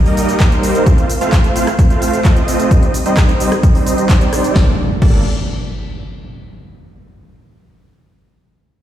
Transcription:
0.06 0.38 G3 medium
0.06 0.38 A#3 medium
0.06 0.38 D#4 medium
0.06 0.38 A#4 medium
0.06 0.38 D#5 loud
0.06 open hi-hat medium
0.06 shaker soft
0.17 open hi-hat loud
0.17 shaker medium
0.29 closed hi-hat soft
0.29 shaker soft
0.40 0.84 A#3 medium
0.40 0.84 A#4 medium
0.40 0.84 C5 loud
0.40 kick loud
0.40 clap loud
0.40 closed hi-hat medium
0.40 shaker soft
0.52 closed hi-hat soft
0.52 shaker soft
0.63 open hi-hat loud
0.63 shaker medium
0.75 closed hi-hat soft
0.75 shaker soft
0.86 1.06 A3 medium
0.86 1.06 C5 medium
0.86 1.06 F5 medium
0.86 kick loud
0.86 closed hi-hat medium
0.86 shaker soft
0.98 closed hi-hat soft
0.98 shaker soft
1.10 open hi-hat medium
1.10 shaker medium
1.21 1.53 A3 medium
1.21 1.53 C4 medium
1.21 1.53 F4 medium
1.21 1.53 C5 medium
1.21 1.53 F5 loud
1.21 closed hi-hat soft
1.21 shaker soft
1.32 kick loud
1.32 cross-stick medium
1.32 clap loud
1.32 closed hi-hat medium
1.32 shaker soft
1.44 closed hi-hat soft
1.44 shaker soft
1.56 1.68 A3 medium
1.56 1.68 C4 medium
1.56 1.68 F4 medium
1.56 1.68 C5 medium
1.56 1.68 F5 loud
1.56 open hi-hat loud
1.56 shaker medium
1.67 cross-stick medium
1.67 closed hi-hat soft
1.67 shaker soft
1.79 kick loud
1.79 closed hi-hat medium
1.79 shaker soft
1.90 2.22 A3 medium
1.90 2.22 C4 medium
1.90 2.22 F4 medium
1.90 2.22 C5 medium
1.90 2.22 F5 loud
1.90 closed hi-hat soft
1.90 shaker soft
2.02 open hi-hat loud
2.02 shaker medium
2.13 closed hi-hat soft
2.13 shaker soft
2.25 2.68 A3 loud
2.25 2.68 C4 medium
2.25 2.68 F4 medium
2.25 2.68 D#5 loud
2.25 kick loud
2.25 clap loud
2.25 closed hi-hat medium
2.25 shaker soft
2.37 closed hi-hat soft
2.37 shaker soft
2.48 open hi-hat loud
2.48 shaker medium
2.60 closed hi-hat soft
2.60 shaker soft
2.71 2.91 G3 medium
2.71 2.91 C4 medium
2.71 2.91 D#4 medium
2.71 2.91 C5 medium
2.71 2.91 D#5 loud
2.71 kick loud
2.71 closed hi-hat medium
2.71 shaker soft
2.83 closed hi-hat soft
2.83 shaker soft
2.94 open hi-hat loud
2.94 shaker medium
3.06 3.38 G3 medium
3.06 3.38 C4 medium
3.06 3.38 D#4 medium
3.06 3.38 C5 medium
3.06 3.38 D#5 loud
3.06 closed hi-hat soft
3.06 shaker soft
3.17 kick loud
3.17 cross-stick medium
3.17 clap loud
3.17 closed hi-hat medium
3.17 shaker soft
3.29 closed hi-hat soft
3.29 shaker soft
3.40 3.53 G3 medium
3.40 3.53 C4 medium
3.40 3.53 D#4 medium
3.40 3.53 C5 medium
3.40 3.52 D#5 loud
3.40 open hi-hat loud
3.40 shaker medium
3.52 cross-stick medium
3.52 closed hi-hat soft
3.52 shaker soft
3.63 kick loud
3.63 closed hi-hat medium
3.63 shaker soft
3.75 4.07 G3 medium
3.75 4.07 C4 medium
3.75 4.07 D#4 medium
3.75 4.07 C5 medium
3.75 4.07 D#5 loud
3.75 open hi-hat medium
3.75 shaker soft
3.87 open hi-hat loud
3.87 shaker medium
3.98 closed hi-hat soft
3.98 shaker soft
4.09 4.53 C4 medium
4.09 4.53 D#4 medium
4.09 kick loud
4.09 clap loud
4.09 closed hi-hat medium
4.09 shaker soft
4.21 closed hi-hat soft
4.21 shaker soft
4.33 cross-stick medium
4.33 open hi-hat loud
4.33 shaker medium
4.44 closed hi-hat soft
4.44 shaker soft
4.56 4.69 G1 loud
4.56 4.69 G3 medium
4.56 4.69 A#3 medium
4.56 4.69 D4 medium
4.56 4.69 A4 medium
4.56 4.69 D5 medium
4.56 kick loud
4.56 snare medium
4.56 impact medium
5.02 5.23 G1 medium
5.02 5.19 G3 medium
5.02 5.19 A#3 medium
5.02 5.19 D4 medium
5.02 5.19 A4 medium
5.02 5.19 D5 loud
5.02 kick loud
5.02 crash medium

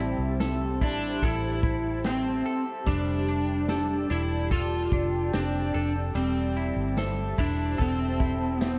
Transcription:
0.00 0.16 A1 loud
0.00 2.86 G3 medium
0.00 0.86 C4 medium
0.00 2.04 C4 medium
0.00 0.80 E4 medium
0.00 1.10 E4 medium
0.00 8.79 G4 medium
0.00 0.40 A4 medium
0.00 2.82 C5 medium
0.00 2.82 E5 medium
0.00 6.11 A5 loud
0.00 ride soft
0.18 0.81 C2 medium
0.40 1.22 A4 medium
0.40 snare loud
0.40 ride medium
0.40 tambourine medium
0.81 1.20 A1 medium
0.81 1.24 D4 loud
0.81 1.62 E4 medium
0.81 kick medium
0.81 ride soft
1.22 2.41 A1 loud
1.22 2.08 E4 loud
1.22 2.45 A4 medium
1.22 kick medium
1.22 ride medium
1.63 2.95 E4 medium
1.63 kick loud
1.63 ride soft
2.04 3.32 C4 medium
2.04 2.63 C4 medium
2.04 snare loud
2.04 ride medium
2.04 tambourine medium
2.46 3.69 A4 medium
2.46 ride soft
2.86 4.06 F1 loud
2.86 6.15 G3 medium
2.86 4.11 D4 loud
2.86 6.12 D5 medium
2.86 6.12 G5 medium
2.86 kick loud
2.86 ride medium
3.28 4.09 D4 medium
3.28 ride soft
3.68 4.80 G4 medium
3.68 4.51 A4 medium
3.68 snare loud
3.68 ride medium
3.68 tambourine medium
4.10 4.88 E1 medium
4.10 4.92 D4 medium
4.10 4.52 E4 loud
4.10 ride soft
4.51 5.34 F4 loud
4.51 5.74 A4 medium
4.51 kick medium
4.51 ride medium
4.92 5.31 F1 loud
4.92 6.24 D4 medium
4.92 kick loud
4.92 ride soft
5.33 5.73 F1 medium
5.33 8.61 C4 medium
5.33 5.92 D4 loud
5.33 snare loud
5.33 ride medium
5.33 tambourine medium
5.74 6.14 F1 medium
5.74 6.97 A4 medium
5.74 6.53 A4 medium
5.74 ride soft
6.15 6.74 E1 loud
6.15 8.79 G3 medium
6.15 6.94 C4 medium
6.15 8.79 C5 medium
6.15 8.79 E5 medium
6.15 8.79 A5 medium
6.15 ride medium
6.57 7.38 E4 medium
6.57 ride soft
6.76 7.35 G1 medium
6.97 7.78 A4 medium
6.97 8.09 C5 medium
6.97 snare loud
6.97 ride medium
6.97 tambourine medium
7.38 7.77 E1 medium
7.38 7.81 D4 loud
7.38 8.19 E4 medium
7.38 kick medium
7.38 ride medium
7.78 8.79 E1 loud
7.78 8.59 C4 medium
7.78 8.79 A4 medium
7.78 kick medium
7.78 ride medium
8.20 8.79 E4 medium
8.20 kick loud
8.20 ride soft
8.59 8.79 B3 medium
8.59 8.79 C4 medium
8.59 snare loud
8.59 ride medium
8.59 tambourine medium

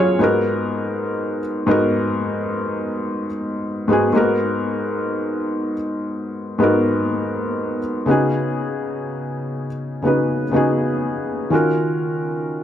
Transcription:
0.00 0.15 F#3 medium
0.00 0.15 C#4 medium
0.00 0.16 F4 medium
0.00 0.16 G#4 medium
0.00 0.17 C#5 medium
0.19 1.38 G#2 medium
0.19 1.39 B3 medium
0.19 1.39 D#4 medium
0.19 1.40 F#4 medium
0.24 1.40 A#4 loud
1.66 3.25 G#2 medium
1.66 3.26 B3 medium
1.66 3.26 D#4 medium
1.66 3.27 F#4 medium
1.71 3.27 A#4 loud
3.88 4.08 G#2 medium
3.88 4.09 B3 medium
3.88 4.10 D#4 medium
3.88 4.10 F#4 medium
3.93 4.11 G#4 medium
4.13 5.71 G#2 medium
4.13 4.20 A#3 medium
4.13 5.72 D#4 medium
4.13 5.73 F#4 medium
4.17 5.75 B3 medium
4.17 5.74 A#4 loud
6.58 7.78 G#2 medium
6.58 7.78 B3 medium
6.58 7.79 D#4 medium
6.58 7.79 F#4 medium
6.63 7.80 A#4 medium
8.06 9.65 C#3 medium
8.06 9.65 B3 medium
8.06 9.66 D#4 medium
8.06 9.66 F#4 medium
8.11 9.67 G#4 medium
10.02 10.43 C#3 medium
10.02 10.43 B3 medium
10.02 10.44 D#4 medium
10.02 10.45 F#4 medium
10.07 10.45 B4 medium
10.51 11.51 C#3 medium
10.51 11.51 B3 medium
10.51 11.52 D#4 medium
10.51 11.52 F#4 medium
10.56 11.53 G#4 medium
11.50 12.63 D#3 medium
11.50 12.63 C#4 medium
11.50 12.63 F4 medium
11.50 12.63 F#4 medium
11.55 12.63 A#4 medium

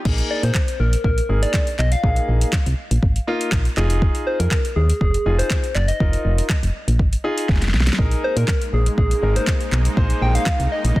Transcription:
0.05 0.22 A#1 loud
0.05 0.52 A#3 medium
0.05 0.52 D#4 medium
0.05 0.52 G#4 loud
0.05 kick loud
0.05 crash medium
0.18 closed hi-hat medium
0.31 0.45 D5 medium
0.43 0.51 A#2 medium
0.43 0.82 C5 medium
0.43 closed hi-hat medium
0.54 kick loud
0.54 snare medium
0.54 clap loud
0.68 closed hi-hat medium
0.80 0.96 A#1 medium
0.80 1.04 A#4 medium
0.93 closed hi-hat medium
1.04 1.21 A#1 medium
1.04 1.44 A#4 loud
1.04 kick loud
1.18 closed hi-hat medium
1.29 1.45 G#1 loud
1.29 1.65 A#3 medium
1.29 1.65 D#4 medium
1.29 1.65 G#4 medium
1.43 1.80 D5 loud
1.43 closed hi-hat medium
1.54 kick loud
1.54 snare medium
1.54 clap loud
1.67 closed hi-hat medium
1.79 1.95 B1 medium
1.79 1.94 D#5 loud
1.79 clap medium
1.92 2.66 F5 loud
1.92 closed hi-hat medium
2.03 2.20 A#1 loud
2.03 2.50 A#3 medium
2.03 2.51 D#4 medium
2.03 2.51 G#4 medium
2.03 kick loud
2.16 closed hi-hat soft
2.28 2.45 A#1 loud
2.41 closed hi-hat medium
2.53 kick loud
2.53 snare medium
2.53 clap loud
2.66 2.74 C2 medium
2.66 closed hi-hat medium
2.91 2.99 A#1 medium
2.91 closed hi-hat medium
3.03 3.19 G#1 loud
3.03 kick medium
3.16 closed hi-hat medium
3.27 3.63 A#3 medium
3.27 3.63 D#4 medium
3.27 3.63 F4 loud
3.41 closed hi-hat medium
3.52 3.69 A#1 medium
3.52 kick loud
3.52 snare medium
3.52 clap loud
3.65 closed hi-hat medium
3.77 4.10 F1 loud
3.77 4.57 D#4 medium
3.77 4.57 F4 medium
3.77 4.57 G#4 loud
3.77 clap medium
3.90 closed hi-hat medium
4.02 kick loud
4.15 closed hi-hat soft
4.27 4.41 C5 medium
4.40 4.47 F2 loud
4.40 4.75 A#4 medium
4.40 closed hi-hat medium
4.51 kick loud
4.51 snare medium
4.51 clap loud
4.65 closed hi-hat medium
4.76 4.92 D#2 medium
4.76 4.99 G#4 medium
4.90 closed hi-hat medium
5.01 5.17 F1 loud
5.01 5.36 G#4 loud
5.01 kick loud
5.14 closed hi-hat medium
5.26 5.42 F1 medium
5.26 5.61 D#4 medium
5.26 5.62 F4 medium
5.26 5.62 G#4 medium
5.39 5.77 C5 loud
5.39 closed hi-hat medium
5.50 kick loud
5.50 snare medium
5.50 clap loud
5.64 closed hi-hat medium
5.75 5.92 F#1 medium
5.75 5.89 D5 loud
5.75 clap medium
5.88 6.63 D#5 loud
5.88 closed hi-hat medium
6.00 6.17 F1 loud
6.00 6.47 D#4 medium
6.00 6.47 F4 medium
6.00 6.47 A#4 medium
6.00 kick loud
6.13 closed hi-hat soft
6.25 6.41 F1 loud
6.38 closed hi-hat medium
6.49 kick loud
6.49 snare medium
6.49 clap loud
6.63 6.71 F1 medium
6.63 closed hi-hat medium
6.88 7.01 A#1 medium
6.88 closed hi-hat medium
6.99 7.16 G#1 medium
6.99 kick loud
7.13 closed hi-hat medium
7.24 7.60 D#4 medium
7.24 7.60 F4 medium
7.24 7.60 G#4 loud
7.38 closed hi-hat medium
7.49 7.75 F1 medium
7.49 kick loud
7.49 snare medium
7.56 snare medium
7.62 snare medium
7.62 closed hi-hat medium
7.68 snare medium
7.74 7.90 B1 loud
7.74 snare medium
7.80 snare medium
7.87 snare loud
7.87 closed hi-hat medium
7.93 snare medium
7.98 8.15 A#1 loud
7.98 11.00 G#3 medium
7.98 11.00 A#3 medium
7.98 8.45 D#4 medium
7.98 11.00 D#4 medium
7.98 8.46 G#4 medium
7.98 8.46 A#4 loud
7.98 kick loud
8.11 closed hi-hat soft
8.24 8.39 C5 loud
8.37 8.44 A#2 loud
8.37 8.75 A#4 loud
8.37 closed hi-hat medium
8.48 kick loud
8.48 snare medium
8.48 clap loud
8.62 closed hi-hat medium
8.73 8.89 A#1 medium
8.73 8.98 G#4 medium
8.86 closed hi-hat medium
8.98 9.14 A#1 loud
8.98 9.38 G#4 loud
8.98 kick loud
9.11 closed hi-hat medium
9.23 9.39 G#1 medium
9.23 9.58 D#4 medium
9.23 9.58 G#4 medium
9.23 9.59 A#4 medium
9.36 9.72 C5 medium
9.36 closed hi-hat medium
9.47 kick loud
9.47 snare medium
9.47 clap loud
9.61 closed hi-hat medium
9.72 9.88 B1 medium
9.72 clap medium
9.85 closed hi-hat medium
9.97 10.13 A#1 loud
9.97 10.44 D#4 medium
9.97 10.44 G#4 medium
9.97 10.44 C5 loud
9.97 kick loud
10.10 closed hi-hat medium
10.22 10.38 A#1 loud
10.22 10.37 G5 loud
10.35 10.73 F5 loud
10.35 closed hi-hat medium
10.46 kick loud
10.46 snare loud
10.46 clap loud
10.60 10.67 C2 medium
10.60 closed hi-hat medium
10.72 10.96 D#5 medium
10.84 10.92 A#1 medium
10.84 closed hi-hat medium
10.96 11.00 G#1 loud
10.96 11.00 D#5 medium
10.96 kick loud

